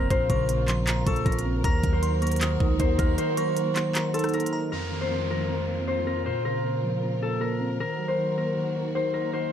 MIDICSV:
0, 0, Header, 1, 9, 480
1, 0, Start_track
1, 0, Key_signature, -5, "minor"
1, 0, Tempo, 384615
1, 130, Time_signature, 4, 2, 24, 8
1, 11883, End_track
2, 0, Start_track
2, 0, Title_t, "Synth bell"
2, 0, Program_c, 0, 98
2, 371, Note_on_c, 0, 85, 79
2, 822, Note_off_c, 0, 85, 0
2, 851, Note_on_c, 0, 84, 76
2, 1079, Note_off_c, 0, 84, 0
2, 1092, Note_on_c, 0, 82, 91
2, 1319, Note_off_c, 0, 82, 0
2, 1330, Note_on_c, 0, 85, 90
2, 2007, Note_off_c, 0, 85, 0
2, 2050, Note_on_c, 0, 82, 115
2, 2501, Note_off_c, 0, 82, 0
2, 2529, Note_on_c, 0, 84, 91
2, 2758, Note_off_c, 0, 84, 0
2, 2770, Note_on_c, 0, 85, 83
2, 2998, Note_off_c, 0, 85, 0
2, 3010, Note_on_c, 0, 87, 85
2, 3687, Note_off_c, 0, 87, 0
2, 3730, Note_on_c, 0, 89, 87
2, 3958, Note_off_c, 0, 89, 0
2, 4210, Note_on_c, 0, 85, 96
2, 4661, Note_off_c, 0, 85, 0
2, 4690, Note_on_c, 0, 84, 88
2, 4918, Note_off_c, 0, 84, 0
2, 4929, Note_on_c, 0, 82, 82
2, 5158, Note_off_c, 0, 82, 0
2, 5170, Note_on_c, 0, 84, 84
2, 5621, Note_off_c, 0, 84, 0
2, 5649, Note_on_c, 0, 82, 105
2, 5878, Note_off_c, 0, 82, 0
2, 11883, End_track
3, 0, Start_track
3, 0, Title_t, "Harp"
3, 0, Program_c, 1, 46
3, 0, Note_on_c, 1, 70, 81
3, 0, Note_on_c, 1, 72, 79
3, 125, Note_off_c, 1, 72, 0
3, 130, Note_on_c, 1, 72, 91
3, 365, Note_off_c, 1, 70, 0
3, 370, Note_on_c, 1, 70, 81
3, 1337, Note_on_c, 1, 69, 87
3, 1411, Note_off_c, 1, 70, 0
3, 1566, Note_on_c, 1, 70, 81
3, 1641, Note_off_c, 1, 69, 0
3, 2052, Note_off_c, 1, 70, 0
3, 2057, Note_on_c, 1, 70, 103
3, 2401, Note_off_c, 1, 72, 0
3, 2406, Note_on_c, 1, 72, 72
3, 2768, Note_off_c, 1, 70, 0
3, 2773, Note_on_c, 1, 70, 75
3, 3487, Note_off_c, 1, 72, 0
3, 3492, Note_on_c, 1, 72, 81
3, 3718, Note_off_c, 1, 70, 0
3, 3723, Note_on_c, 1, 70, 76
3, 3965, Note_off_c, 1, 72, 0
3, 3970, Note_on_c, 1, 72, 94
3, 4207, Note_off_c, 1, 70, 0
3, 4212, Note_on_c, 1, 70, 78
3, 5166, Note_on_c, 1, 69, 81
3, 5241, Note_off_c, 1, 70, 0
3, 5415, Note_on_c, 1, 70, 82
3, 5490, Note_off_c, 1, 69, 0
3, 5884, Note_off_c, 1, 70, 0
3, 5889, Note_on_c, 1, 70, 92
3, 6250, Note_off_c, 1, 72, 0
3, 6255, Note_on_c, 1, 72, 71
3, 6617, Note_off_c, 1, 70, 0
3, 6622, Note_on_c, 1, 70, 73
3, 7330, Note_off_c, 1, 72, 0
3, 7335, Note_on_c, 1, 72, 77
3, 7569, Note_off_c, 1, 70, 0
3, 7574, Note_on_c, 1, 70, 76
3, 7805, Note_off_c, 1, 72, 0
3, 7810, Note_on_c, 1, 72, 87
3, 8045, Note_off_c, 1, 70, 0
3, 8050, Note_on_c, 1, 70, 76
3, 9017, Note_on_c, 1, 69, 79
3, 9091, Note_off_c, 1, 70, 0
3, 9246, Note_on_c, 1, 70, 80
3, 9320, Note_off_c, 1, 69, 0
3, 9733, Note_off_c, 1, 70, 0
3, 9738, Note_on_c, 1, 70, 96
3, 10081, Note_off_c, 1, 72, 0
3, 10086, Note_on_c, 1, 72, 67
3, 10449, Note_off_c, 1, 70, 0
3, 10454, Note_on_c, 1, 70, 72
3, 11166, Note_off_c, 1, 72, 0
3, 11171, Note_on_c, 1, 72, 76
3, 11398, Note_off_c, 1, 70, 0
3, 11403, Note_on_c, 1, 70, 70
3, 11644, Note_off_c, 1, 72, 0
3, 11649, Note_on_c, 1, 72, 93
3, 11883, Note_off_c, 1, 70, 0
3, 11883, Note_off_c, 1, 72, 0
3, 11883, End_track
4, 0, Start_track
4, 0, Title_t, "String section"
4, 0, Program_c, 2, 48
4, 0, Note_on_c, 2, 60, 74
4, 129, Note_on_c, 2, 49, 80
4, 130, Note_on_c, 2, 65, 75
4, 130, Note_on_c, 2, 70, 86
4, 2011, Note_off_c, 2, 60, 0
4, 2031, Note_off_c, 2, 49, 0
4, 2031, Note_off_c, 2, 65, 0
4, 2049, Note_on_c, 2, 58, 77
4, 2049, Note_on_c, 2, 66, 74
4, 2050, Note_on_c, 2, 51, 79
4, 5840, Note_off_c, 2, 70, 0
4, 5851, Note_off_c, 2, 58, 0
4, 5852, Note_off_c, 2, 51, 0
4, 5852, Note_off_c, 2, 66, 0
4, 5890, Note_on_c, 2, 51, 75
4, 5890, Note_on_c, 2, 60, 68
4, 5890, Note_on_c, 2, 65, 71
4, 5890, Note_on_c, 2, 70, 85
4, 7791, Note_off_c, 2, 51, 0
4, 7791, Note_off_c, 2, 70, 0
4, 7811, Note_on_c, 2, 49, 75
4, 7811, Note_on_c, 2, 70, 83
4, 9692, Note_off_c, 2, 60, 0
4, 9692, Note_off_c, 2, 65, 0
4, 9712, Note_off_c, 2, 49, 0
4, 9731, Note_on_c, 2, 51, 76
4, 9731, Note_on_c, 2, 58, 67
4, 9731, Note_on_c, 2, 66, 68
4, 11883, Note_off_c, 2, 51, 0
4, 11883, Note_off_c, 2, 58, 0
4, 11883, Note_off_c, 2, 66, 0
4, 11883, Note_off_c, 2, 70, 0
4, 11883, End_track
5, 0, Start_track
5, 0, Title_t, "Tine electric piano"
5, 0, Program_c, 3, 4
5, 0, Control_c, 3, 64, 127
5, 0, Note_on_c, 3, 41, 83
5, 0, Note_on_c, 3, 51, 79
5, 0, Note_on_c, 3, 53, 85
5, 0, Note_on_c, 3, 58, 85
5, 0, Note_on_c, 3, 60, 96
5, 130, Note_off_c, 3, 41, 0
5, 130, Note_off_c, 3, 58, 0
5, 130, Note_off_c, 3, 60, 0
5, 130, Note_on_c, 3, 46, 97
5, 132, Note_off_c, 3, 53, 0
5, 144, Control_c, 3, 64, 0
5, 150, Note_off_c, 3, 51, 0
5, 362, Control_c, 3, 64, 127
5, 370, Note_on_c, 3, 49, 90
5, 596, Note_off_c, 3, 46, 0
5, 611, Note_on_c, 3, 46, 84
5, 850, Note_on_c, 3, 53, 85
5, 1076, Note_off_c, 3, 46, 0
5, 1091, Note_on_c, 3, 46, 89
5, 1331, Note_on_c, 3, 58, 88
5, 1553, Note_off_c, 3, 46, 0
5, 1568, Note_on_c, 3, 46, 87
5, 1570, Note_off_c, 3, 49, 0
5, 1812, Note_on_c, 3, 60, 89
5, 2049, Note_off_c, 3, 46, 0
5, 2049, Note_on_c, 3, 51, 101
5, 2050, Note_off_c, 3, 53, 0
5, 2051, Note_off_c, 3, 58, 0
5, 2051, Note_off_c, 3, 60, 0
5, 2068, Control_c, 3, 64, 0
5, 2287, Note_on_c, 3, 54, 89
5, 2302, Control_c, 3, 64, 127
5, 2515, Note_off_c, 3, 51, 0
5, 2530, Note_on_c, 3, 51, 84
5, 2768, Note_on_c, 3, 58, 87
5, 2994, Note_off_c, 3, 51, 0
5, 3009, Note_on_c, 3, 51, 98
5, 3250, Note_on_c, 3, 63, 77
5, 3476, Note_off_c, 3, 51, 0
5, 3489, Note_off_c, 3, 54, 0
5, 3491, Note_on_c, 3, 51, 92
5, 3731, Note_on_c, 3, 75, 84
5, 3953, Note_off_c, 3, 51, 0
5, 3968, Note_on_c, 3, 51, 101
5, 3969, Note_off_c, 3, 58, 0
5, 4211, Note_on_c, 3, 54, 83
5, 4435, Note_off_c, 3, 51, 0
5, 4450, Note_off_c, 3, 63, 0
5, 4450, Note_on_c, 3, 51, 84
5, 4688, Note_on_c, 3, 58, 88
5, 4916, Note_off_c, 3, 51, 0
5, 4930, Note_off_c, 3, 75, 0
5, 4930, Note_on_c, 3, 51, 87
5, 5167, Note_on_c, 3, 63, 85
5, 5394, Note_off_c, 3, 51, 0
5, 5409, Note_on_c, 3, 51, 85
5, 5411, Note_off_c, 3, 54, 0
5, 5650, Note_on_c, 3, 75, 94
5, 5889, Note_off_c, 3, 58, 0
5, 5889, Note_off_c, 3, 63, 0
5, 5890, Note_off_c, 3, 51, 0
5, 5890, Note_off_c, 3, 75, 0
5, 5890, Note_on_c, 3, 41, 87
5, 5908, Control_c, 3, 64, 0
5, 6099, Control_c, 3, 64, 127
5, 6129, Note_on_c, 3, 51, 78
5, 6352, Note_off_c, 3, 41, 0
5, 6367, Note_on_c, 3, 41, 81
5, 6611, Note_on_c, 3, 53, 81
5, 6835, Note_off_c, 3, 41, 0
5, 6850, Note_on_c, 3, 41, 86
5, 7090, Note_on_c, 3, 58, 80
5, 7314, Note_off_c, 3, 41, 0
5, 7329, Note_on_c, 3, 41, 79
5, 7330, Note_off_c, 3, 51, 0
5, 7569, Note_on_c, 3, 60, 89
5, 7810, Note_off_c, 3, 41, 0
5, 7810, Note_off_c, 3, 58, 0
5, 7810, Note_off_c, 3, 60, 0
5, 7811, Note_off_c, 3, 53, 0
5, 7811, Note_on_c, 3, 46, 93
5, 7828, Control_c, 3, 64, 0
5, 8050, Note_on_c, 3, 49, 85
5, 8062, Control_c, 3, 64, 127
5, 8275, Note_off_c, 3, 46, 0
5, 8290, Note_on_c, 3, 46, 77
5, 8530, Note_on_c, 3, 53, 82
5, 8756, Note_off_c, 3, 46, 0
5, 8771, Note_on_c, 3, 46, 84
5, 9012, Note_on_c, 3, 58, 84
5, 9233, Note_off_c, 3, 46, 0
5, 9248, Note_on_c, 3, 46, 83
5, 9250, Note_off_c, 3, 49, 0
5, 9491, Note_on_c, 3, 60, 89
5, 9729, Note_off_c, 3, 46, 0
5, 9729, Note_on_c, 3, 51, 93
5, 9730, Note_off_c, 3, 53, 0
5, 9731, Note_off_c, 3, 58, 0
5, 9731, Note_off_c, 3, 60, 0
5, 9747, Control_c, 3, 64, 0
5, 9968, Note_on_c, 3, 54, 83
5, 9970, Control_c, 3, 64, 127
5, 10194, Note_off_c, 3, 51, 0
5, 10209, Note_on_c, 3, 51, 79
5, 10449, Note_on_c, 3, 58, 81
5, 10674, Note_off_c, 3, 51, 0
5, 10689, Note_on_c, 3, 51, 92
5, 10930, Note_on_c, 3, 63, 76
5, 11156, Note_off_c, 3, 51, 0
5, 11169, Note_off_c, 3, 54, 0
5, 11171, Note_on_c, 3, 51, 88
5, 11411, Note_on_c, 3, 75, 80
5, 11634, Note_off_c, 3, 51, 0
5, 11649, Note_off_c, 3, 58, 0
5, 11649, Note_on_c, 3, 51, 93
5, 11883, Note_off_c, 3, 51, 0
5, 11883, Note_off_c, 3, 63, 0
5, 11883, Note_off_c, 3, 75, 0
5, 11883, End_track
6, 0, Start_track
6, 0, Title_t, "808-style bass"
6, 0, Program_c, 4, 38
6, 131, Note_on_c, 4, 34, 111
6, 361, Note_off_c, 4, 34, 0
6, 370, Note_on_c, 4, 34, 105
6, 1292, Note_off_c, 4, 34, 0
6, 1330, Note_on_c, 4, 34, 110
6, 1561, Note_off_c, 4, 34, 0
6, 1571, Note_on_c, 4, 34, 106
6, 2031, Note_off_c, 4, 34, 0
6, 2050, Note_on_c, 4, 39, 115
6, 2281, Note_off_c, 4, 39, 0
6, 2291, Note_on_c, 4, 39, 110
6, 3212, Note_off_c, 4, 39, 0
6, 3250, Note_on_c, 4, 37, 107
6, 3480, Note_off_c, 4, 37, 0
6, 3491, Note_on_c, 4, 39, 107
6, 3721, Note_off_c, 4, 39, 0
6, 3731, Note_on_c, 4, 39, 105
6, 3961, Note_off_c, 4, 39, 0
6, 11883, End_track
7, 0, Start_track
7, 0, Title_t, "Downlifter"
7, 0, Program_c, 5, 103
7, 5890, Note_on_c, 5, 60, 77
7, 9730, Note_off_c, 5, 60, 0
7, 11883, End_track
8, 0, Start_track
8, 0, Title_t, "Swell"
8, 0, Program_c, 6, 103
8, 11650, Note_on_c, 6, 60, 79
8, 11883, Note_off_c, 6, 60, 0
8, 11883, End_track
9, 0, Start_track
9, 0, Title_t, "Drums"
9, 130, Note_on_c, 9, 36, 112
9, 131, Note_on_c, 9, 42, 83
9, 255, Note_off_c, 9, 36, 0
9, 255, Note_off_c, 9, 42, 0
9, 370, Note_on_c, 9, 42, 74
9, 371, Note_on_c, 9, 36, 90
9, 495, Note_off_c, 9, 36, 0
9, 495, Note_off_c, 9, 42, 0
9, 610, Note_on_c, 9, 42, 93
9, 735, Note_off_c, 9, 42, 0
9, 849, Note_on_c, 9, 39, 91
9, 850, Note_on_c, 9, 42, 88
9, 974, Note_off_c, 9, 39, 0
9, 975, Note_off_c, 9, 42, 0
9, 1089, Note_on_c, 9, 39, 126
9, 1090, Note_on_c, 9, 42, 92
9, 1214, Note_off_c, 9, 39, 0
9, 1214, Note_off_c, 9, 42, 0
9, 1330, Note_on_c, 9, 36, 98
9, 1330, Note_on_c, 9, 42, 75
9, 1450, Note_off_c, 9, 42, 0
9, 1450, Note_on_c, 9, 42, 44
9, 1454, Note_off_c, 9, 36, 0
9, 1570, Note_off_c, 9, 42, 0
9, 1570, Note_on_c, 9, 42, 46
9, 1571, Note_on_c, 9, 36, 98
9, 1650, Note_off_c, 9, 42, 0
9, 1650, Note_on_c, 9, 42, 64
9, 1696, Note_off_c, 9, 36, 0
9, 1730, Note_off_c, 9, 42, 0
9, 1730, Note_on_c, 9, 42, 82
9, 1855, Note_off_c, 9, 42, 0
9, 2050, Note_on_c, 9, 36, 107
9, 2050, Note_on_c, 9, 42, 84
9, 2175, Note_off_c, 9, 36, 0
9, 2175, Note_off_c, 9, 42, 0
9, 2290, Note_on_c, 9, 36, 92
9, 2290, Note_on_c, 9, 42, 75
9, 2415, Note_off_c, 9, 36, 0
9, 2415, Note_off_c, 9, 42, 0
9, 2530, Note_on_c, 9, 42, 97
9, 2655, Note_off_c, 9, 42, 0
9, 2770, Note_on_c, 9, 42, 50
9, 2830, Note_off_c, 9, 42, 0
9, 2830, Note_on_c, 9, 42, 63
9, 2890, Note_off_c, 9, 42, 0
9, 2890, Note_on_c, 9, 42, 74
9, 2950, Note_off_c, 9, 42, 0
9, 2950, Note_on_c, 9, 42, 86
9, 3009, Note_on_c, 9, 39, 126
9, 3010, Note_off_c, 9, 42, 0
9, 3010, Note_on_c, 9, 42, 96
9, 3133, Note_off_c, 9, 39, 0
9, 3134, Note_off_c, 9, 42, 0
9, 3250, Note_on_c, 9, 36, 94
9, 3374, Note_off_c, 9, 36, 0
9, 3490, Note_on_c, 9, 42, 78
9, 3491, Note_on_c, 9, 36, 95
9, 3615, Note_off_c, 9, 42, 0
9, 3616, Note_off_c, 9, 36, 0
9, 3730, Note_on_c, 9, 42, 80
9, 3731, Note_on_c, 9, 36, 106
9, 3854, Note_off_c, 9, 42, 0
9, 3856, Note_off_c, 9, 36, 0
9, 3970, Note_on_c, 9, 42, 84
9, 4095, Note_off_c, 9, 42, 0
9, 4210, Note_on_c, 9, 42, 74
9, 4335, Note_off_c, 9, 42, 0
9, 4450, Note_on_c, 9, 42, 92
9, 4575, Note_off_c, 9, 42, 0
9, 4689, Note_on_c, 9, 39, 90
9, 4690, Note_on_c, 9, 42, 89
9, 4814, Note_off_c, 9, 39, 0
9, 4815, Note_off_c, 9, 42, 0
9, 4929, Note_on_c, 9, 39, 125
9, 4930, Note_on_c, 9, 42, 94
9, 5054, Note_off_c, 9, 39, 0
9, 5055, Note_off_c, 9, 42, 0
9, 5170, Note_on_c, 9, 42, 75
9, 5231, Note_off_c, 9, 42, 0
9, 5231, Note_on_c, 9, 42, 64
9, 5291, Note_off_c, 9, 42, 0
9, 5291, Note_on_c, 9, 37, 93
9, 5291, Note_on_c, 9, 42, 51
9, 5351, Note_off_c, 9, 42, 0
9, 5351, Note_on_c, 9, 42, 43
9, 5411, Note_off_c, 9, 42, 0
9, 5411, Note_on_c, 9, 42, 50
9, 5416, Note_off_c, 9, 37, 0
9, 5491, Note_off_c, 9, 42, 0
9, 5491, Note_on_c, 9, 42, 63
9, 5571, Note_off_c, 9, 42, 0
9, 5571, Note_on_c, 9, 42, 84
9, 5695, Note_off_c, 9, 42, 0
9, 11883, End_track
0, 0, End_of_file